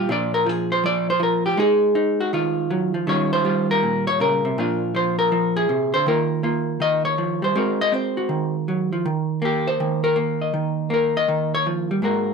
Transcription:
0.09 A#2 F3 D4 F4 D5
0.34 A#4
0.46 F3 G#4
0.72 C5
0.84 F3 D5
1.10 C5
1.20 F3 A#4
1.46 G4
1.57 G#3 D#4 G#4
1.95 D#4
2.21 F#4
2.33 D#3 F4
2.71 F#3
2.94 F3
3.07 D#3 G3 C#4 F4 C#5
3.33 C5
3.45 G3 F4
3.71 A#4
3.83 A#2
4.07 C#5
4.20 C#3 A#4
4.45 C3
4.58 A#2 F3 D4 F4
4.95 F3 C5
5.19 A#4
5.32 F3
5.57 G#4
5.69 C3
5.94 D3 C5
6.06 D#3 A#3 F4 A#4
6.43 A#3 F4
6.80 D#3 D#5
7.05 C#5
7.18 F3
7.42 G3 C5
7.55 G#3 C4 F#4 A#4
7.81 D#5
7.92 C4 C5
8.17 F#4
8.29 D#3
8.68 F#3
8.93 F3
9.05 D#3
9.42 A#3 G4
9.67 C5
9.80 D#3
10.04 A#4
10.16 A#3
10.41 D#5
10.54 D#3
10.90 A#3 A#4
11.17 D#5
11.28 D#3
11.55 C#5
11.66 F3
11.91 G3
12.02 G#2 G#3 A#3 F#4 A#4

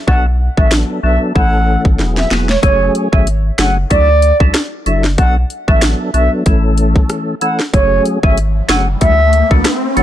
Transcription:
0.07 B1 F#3 B3 D4 A4 F#5, kick
0.57 A1 F#3 B3 D4 A4 E5, kick
0.71 finger snap, snare
1.03 B1 F#3 B3 D4 A4 E5
1.35 A1 E3 A3 C#4 A4 F#5, kick
1.85 G#1, kick
1.99 E1 F#3 B3 E4 G#4, snare
2.17 E5, snare
2.31 E1 F#3 B3 E4 G#4, snare
2.49 C#5, snare
2.63 F#1 F#3 A3 C#4 G#4 C#5, kick, closed hi-hat
2.95 closed hi-hat
3.12 G#1 F#3 A3 C#4 G#4 E5, kick
3.27 closed hi-hat
3.58 F#1 F#3 A3 C#4 G#4 F#5, finger snap, snare, closed hi-hat
3.90 D2 F#3 D4 E4 A4 D5, kick, closed hi-hat
4.22 closed hi-hat
4.40 C#2 F#3 D4 E4 A4, kick
4.54 finger snap, cross-stick, snare, closed hi-hat
4.86 F#1 F#3 D4 E4 A4 E5, closed hi-hat
5.04 snare
5.18 B1 F#3 B3 D4 A4 F#5, kick, closed hi-hat
5.50 closed hi-hat
5.68 A1 F#3 B3 D4 A4 E5, kick
5.82 finger snap, snare, closed hi-hat
6.14 B1 F#3 B3 D4 A4 E5, closed hi-hat
6.46 A1 E3 A3 C#4 A4, kick, closed hi-hat
6.78 closed hi-hat
6.96 kick
7.10 cross-stick, closed hi-hat
7.41 E3 A3 C#4 A4 F#5, closed hi-hat
7.59 snare
7.73 F#1 F#3 A3 C#4 G#4 C#5, kick, closed hi-hat, riser
8.05 closed hi-hat
8.23 G#1 F#3 A3 C#4 G#4 E5, kick
8.38 closed hi-hat
8.69 F#1 F#3 A3 C#4 G#4 F#5, finger snap, snare, closed hi-hat
9.01 D2 E3 A3 D4 F#4 E5, kick, closed hi-hat
9.33 closed hi-hat
9.51 C#2 E3 A3 D4 F#4, kick
9.65 finger snap, cross-stick, snare, closed hi-hat
9.96 F#1 E3 A3 D4 F#4 F#5, closed hi-hat

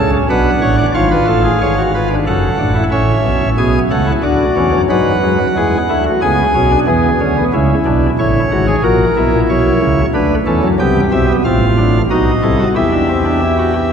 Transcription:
Already playing: C#2 C#3 C#4 A4
0.13 C#4
0.29 B1 B2 D4 B4 F#5
0.61 A1 A2 C#5
0.78 D5
0.94 G#1 G#2 F4 C#5 F5
1.11 B4
1.27 A1 A2 A4
1.45 G#4
1.61 G#1 G#2 G#4 C#5
1.77 F#4
1.95 F4 B4
2.11 D4
2.26 F#1 F#2 C#4 A4 F#5
2.59 A1 A2 D4
2.75 E4
2.91 A1 A2 C#4 C#5 E5
3.24 B1 B2
3.41 A1 A2
3.58 B1 B2 B3 G#4 G#5
3.91 C#2 C#3 A3 A4 F#5
4.07 E4
4.23 D2 D3 D4 F#4 D5
4.57 E2 E3 C#4
4.73 F#2 F#3
4.90 G#2 F#3 G#3 B4 F#5
5.22 F#2 F#3 G#3
5.39 F#3
5.56 E2 E3 G#3 G#4
5.89 D2 D3 A3 E4
6.06 F#4
6.21 C#2 C#3 B3 G#4 G#5
6.55 B1 B2 C#4
6.71 D4
6.87 E2 E3 B3 G#4
7.21 D2 D3 C#4
7.38 B3
7.53 C#2 C#3 C#4 E4
7.86 B1 B2 D4
8.19 A1 A2 E4 C#5
8.51 G#1 G#2 F#4
8.67 G#4
8.83 A#1 A#2 F#4 A#4
9.16 B1 B2 E4
9.33 A#1 A#2
9.49 B1 B2 C#5
9.81 C#2 C#3
10.14 D2 D3 D4 B4
10.46 E2 E3 C#4 A4
10.63 F#2 F#3
10.79 C2 C3 B3 G4 G5
11.11 B1 B2 C4 E5
11.28 B3
11.44 A1 A2 C4 F4 F5
11.77 D4
12.10 B1 B2 D#4 F#4 D#5
12.43 C2 C3 E4 A4
12.60 F#4
12.76 E2 E3 E4 G4 E5
12.92 D4
13.09 C4
13.25 D4
13.42 E4
13.58 F#4
13.75 G4

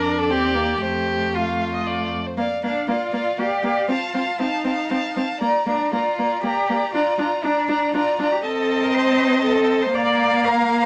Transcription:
Already playing: F2 D4 A#4 D5
0.18 A4
0.30 D#2 C4 G4
0.55 A#3
0.81 F2 A3 G4 C5
1.35 F4 F5
1.74 D#5
1.86 D5
2.27 C5
2.37 A#3 D5 F5
2.63 A#3 D4 D5 F5
2.88 A#3 F4 D5 F5
3.13 A#3 D5 F5
3.38 A#3 G4 D5 F5
3.63 A#3 D5 F5
3.88 C4 F4 F5 A5
4.14 C4 F5 A5
4.40 C4 D#4 F5 A5
4.65 C4 F5 A5
4.90 C4 F5 A5
5.16 C4 F5 A5
5.41 A#3 D5 A#5
5.66 A#3 D4 D5 A#5
5.92 A#3 F4 D5 A#5
6.19 A#3 D5 A#5
6.43 A#3 G4 D5 A#5
6.69 A#3 D5 A#5
6.93 D4 F4 D5 A#5
7.18 D4 D5 A#5
7.44 D4 D5 A#5
7.69 D4 D5 A#5
7.94 D4 F4 D5 A#5
8.19 D4 D5 A#5
8.32 G4
8.44 C4 A4 D#5 A5
8.82 A#4
8.95 C5
9.44 A4
9.82 C5
9.94 A#3 D5 F5 A#5
10.45 A#4
10.82 C5

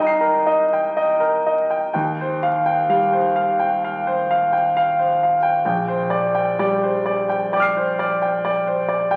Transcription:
Already playing: C2 G3 D#4 A#4 D#5 G5
0.01 A#5 D#6
0.07 C7
0.21 A#4
0.46 D#5
0.73 G5
0.97 D#5
1.20 A#4
1.46 D#5
1.70 G5
1.93 D#2 G5
2.21 C5
2.43 F5
2.66 G5
2.89 G3 F5
3.13 C5
3.36 F5
3.59 G5
3.84 F5
4.07 C5
4.31 F5
4.52 G5
4.77 F5
4.99 C5
5.23 F5
5.43 G5
5.65 A#1 G5
5.88 C5
6.10 D5
6.35 G5
6.59 G3 D5
6.83 C5
7.06 D5
7.29 G5
7.53 D5 G5 D6
7.60 F6 C7
7.77 C5
7.99 D5
8.22 G5
8.45 D5
8.67 C5
8.88 D5
9.11 G5

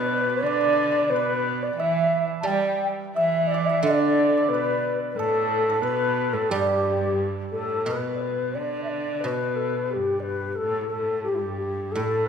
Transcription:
Already playing: B2 A4 B4 D5
0.07 B4
0.14 D5
0.21 B4
0.29 B4
0.42 D3 D5
0.46 D5
0.52 D5
0.61 D5
0.73 D5
0.83 D5
0.92 D5
0.99 D5
1.10 B2 B4
1.16 B4
1.62 D5
1.73 E3 G5
1.78 E5
2.40 G3 A5
2.44 G3 G5
2.48 G5
3.15 E3 E5
3.47 D5
3.51 D5
3.66 E5
3.81 D3 D5
3.86 D5
3.90 E5
3.97 D5
4.37 D5
4.42 D5
4.49 B2 B4
4.54 B4
5.10 B4
5.16 A2 A4
5.70 A4
5.81 B2 B4
6.33 A2 A4
6.49 G2 G3 G4
7.51 A2 A4
7.85 B2 B4
8.14 D5
8.21 B4
8.54 D3 D5
8.83 E5
8.88 D5
9.17 B4 D5
9.24 B2 B4
9.55 A4
9.85 A4
9.90 G4
9.95 G2
10.19 B4 D5
10.52 A4 B4
10.59 A2 A4
10.87 A4
10.92 A2 A4
11.23 G2 G4
11.28 G4
11.34 E4
11.39 G4
11.56 G4
11.60 G4
11.91 A2 A4
11.95 A2

